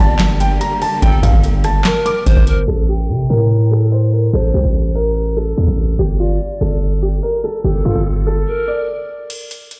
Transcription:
Already playing: string section D3 G3 A#3 G4, pan flute D5
0.00 808-style bass G1, grand piano A5
0.19 snare, clap, closed hi-hat
0.40 grand piano G5, closed hi-hat
0.61 grand piano A#5, closed hi-hat
0.82 grand piano A5, open hi-hat
1.02 808-style bass G1, pan flute A4, grand piano G5, kick, closed hi-hat
1.23 808-style bass G2, grand piano F5, kick, closed hi-hat
1.33 808-style bass G1, kick
1.44 closed hi-hat
1.64 grand piano A5, cross-stick, closed hi-hat
1.85 pan flute A#4, snare, clap, closed hi-hat
2.06 grand piano D6, closed hi-hat
2.26 808-style bass G1, pan flute C5, kick, closed hi-hat
2.37 808-style bass G1, kick
2.47 pan flute A#4, closed hi-hat
2.68 808-style bass A1, grand piano A4
2.89 grand piano G4, pan flute G5
3.09 808-style bass C3
3.30 808-style bass A2, grand piano A#4
3.71 grand piano A4
3.92 grand piano C5
4.13 grand piano A#4
4.33 808-style bass A1, grand piano A4, pan flute C5
4.54 808-style bass C2, grand piano G4
4.64 808-style bass A1
4.95 grand piano A#4
5.37 grand piano A4
5.58 808-style bass E2
5.68 808-style bass A1
5.99 808-style bass G1, grand piano G4
6.19 grand piano F4, pan flute D5
6.61 808-style bass G1, grand piano A4
7.02 grand piano G4
7.23 grand piano A#4
7.44 grand piano A4
7.64 808-style bass G1, grand piano G4, pan flute A4
7.85 808-style bass G2, grand piano F4
7.95 808-style bass G1
8.27 grand piano A4
8.47 pan flute A#4
8.68 grand piano D5
9.30 closed hi-hat, crash
9.51 closed hi-hat
9.71 closed hi-hat

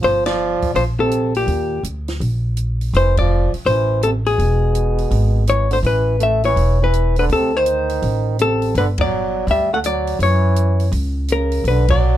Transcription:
0.02 upright bass G1, trombone F3, hollow-body jazz guitar C5, open hi-hat
0.26 trombone F3, hollow-body jazz guitar D5, snare, ride
0.62 muted upright bass stroke, kick, open hi-hat
0.74 upright bass A#1, trombone F3, hollow-body jazz guitar C5, open hi-hat
0.99 trombone C3, hollow-body jazz guitar A4
1.11 closed hi-hat
1.35 trombone A#2, hollow-body jazz guitar G4, open hi-hat
1.47 upright bass D#2, open hi-hat
1.83 upright bass D2, closed hi-hat
2.08 snare, open hi-hat
2.20 upright bass A#1, open hi-hat
2.57 closed hi-hat
2.81 open hi-hat
2.93 upright bass F1, trombone E3, hollow-body jazz guitar C5, open hi-hat
3.17 trombone F3, hollow-body jazz guitar D5, kick, ride
3.53 muted upright bass stroke, open hi-hat
3.66 upright bass A1, trombone E3, hollow-body jazz guitar C5, open hi-hat
4.03 trombone C3, hollow-body jazz guitar A4, closed hi-hat
4.26 trombone B2, hollow-body jazz guitar G#4, open hi-hat
4.38 upright bass E1, open hi-hat
4.75 closed hi-hat
4.98 open hi-hat
5.11 upright bass G#1, open hi-hat
5.47 trombone E3, hollow-body jazz guitar C#5, closed hi-hat
5.71 trombone D3, hollow-body jazz guitar C5, open hi-hat
5.83 upright bass A1, trombone E3, hollow-body jazz guitar B4, open hi-hat
6.20 trombone A3, hollow-body jazz guitar E5, closed hi-hat
6.44 trombone E3, hollow-body jazz guitar C#5, open hi-hat
6.56 upright bass E1, open hi-hat
6.82 trombone E3, hollow-body jazz guitar B4
6.93 closed hi-hat
7.16 trombone D3, hollow-body jazz guitar B4, open hi-hat
7.29 upright bass D2, trombone C3, hollow-body jazz guitar A4, open hi-hat
7.54 trombone D#3, hollow-body jazz guitar C5
7.66 closed hi-hat
7.90 open hi-hat
8.02 upright bass A1, open hi-hat
8.39 trombone C3, hollow-body jazz guitar A4, closed hi-hat
8.62 open hi-hat
8.75 upright bass G1, trombone D3, hollow-body jazz guitar B4, open hi-hat
8.98 trombone F#3, hollow-body jazz guitar D5, kick, ride
9.47 upright bass D2, trombone G3, hollow-body jazz guitar E5, open hi-hat
9.73 trombone A3, hollow-body jazz guitar F#5
9.84 trombone F#3, hollow-body jazz guitar D5, closed hi-hat
10.07 open hi-hat
10.19 upright bass F#2, trombone E3, hollow-body jazz guitar C#5, open hi-hat
10.56 closed hi-hat
10.80 open hi-hat
10.92 upright bass C#2, open hi-hat
11.28 trombone C#3, hollow-body jazz guitar A#4, closed hi-hat
11.52 open hi-hat
11.64 upright bass B1, trombone D3, hollow-body jazz guitar B4, open hi-hat
11.88 trombone F#3, hollow-body jazz guitar D5, kick, ride

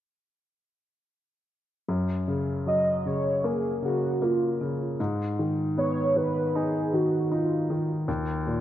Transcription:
1.88 grand piano F#2
2.28 grand piano C#3
2.66 grand piano F#3, soft synth lead D#5
3.05 grand piano C#3, soft synth lead C#5
3.44 grand piano A#3, soft synth lead G#4
3.82 grand piano C#3, soft synth lead F#4
4.22 grand piano A#3, soft synth lead F4
4.61 grand piano C#3
5.00 grand piano G#2
5.39 grand piano D#3
5.77 grand piano B3, soft synth lead C#5
6.16 grand piano D#3, soft synth lead B4
6.55 grand piano D#4, soft synth lead G#4
6.94 grand piano D#3, soft synth lead F#4
7.32 grand piano D#4, soft synth lead F4
7.70 grand piano D#3
8.08 grand piano D#2
8.47 grand piano A#2

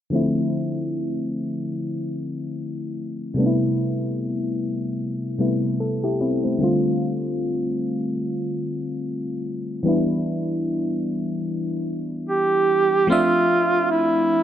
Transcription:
0.10 fm electric piano D3 F3 A3 C4
0.15 fm electric piano E4
3.34 fm electric piano C3 G3 A3 B3
3.39 fm electric piano D4
3.46 fm electric piano E4
5.38 fm electric piano C3 G3 A3 B3 E4
5.80 fm electric piano A4
6.04 fm electric piano E4 G4
6.21 fm electric piano C4 E4
6.44 fm electric piano A3 C4
6.58 fm electric piano D3 G3 A3 C4
6.64 fm electric piano F4
9.83 fm electric piano E3 G3 B3 D4
9.88 fm electric piano E4
12.29 duduk G4
13.07 fm electric piano F3 A3 C4 D4, duduk F4
13.12 fm electric piano E5
13.91 duduk E4

